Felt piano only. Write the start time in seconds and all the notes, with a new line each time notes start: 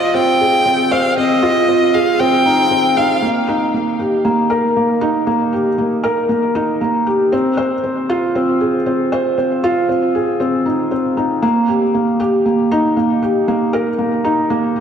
Already playing: C4 F4 C5
0.14 C4
0.40 G#4
0.66 C4
0.91 C5
1.17 C4
1.43 F4
1.68 C4
1.94 G#4
2.20 C4
2.46 D#4
2.71 C4
2.97 D#4
3.22 A#3
3.48 D#4
3.74 A#3
3.99 G4
4.25 A#3
4.50 A#4
4.76 A#3
5.01 D#4
5.27 A#3
5.53 G4
5.78 A#3
6.04 A#4
6.29 A#3
6.55 D#4
6.81 A#3
7.06 G4
7.32 C4
7.57 C5
7.83 C4
8.09 F4
8.35 C4
8.60 G#4
8.86 C4
9.12 C5
9.38 C4
9.64 F4
9.89 C4
10.15 G#4
10.40 C4
10.66 D#4
10.91 C4
11.17 D#4
11.42 A#3
11.68 G4
11.94 A#3
12.20 G4
12.46 A#3
12.72 D#4
12.97 A#3
13.22 G4
13.48 A#3
13.73 A#4
13.98 A#3
14.24 D#4
14.50 A#3
14.76 G4